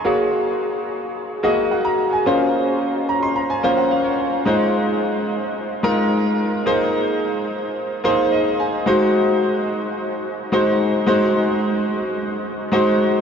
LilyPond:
\new Staff \with { instrumentName = "Grand piano" } { \time 4/4 \key aes \mixolydian \tempo 4 = 109 << { aes''16 r2 r8. ges''16 bes''8 aes''16~ | aes''16 r4 r16 bes''16 c'''16 bes''16 aes''8 ges''16 f''16 des''8. | r1 | r2. ees''8 aes''8 |
r1 | r1 | } \\ { <bes ges' aes' des''>4. r4 <bes ges' aes' ees''>4~ <bes ges' aes' ees''>16 r16 | <bes des' f' c''>4. r4 <bes des' f' c''>4~ <bes des' f' c''>16 r16 | <aes ees' f' c''>4. r4 <aes ees' f' bes'>4~ <aes ees' f' bes'>16 r16 | <bes ees' aes' c''>4. r4 <bes ees' aes' c''>4~ <bes ees' aes' c''>16 r16 |
<aes ees' ges' c''>4. r4. <aes ees' ges' c''>4 | <aes ees' ges' c''>4. r4. <aes ees' ges' c''>4 | } >> }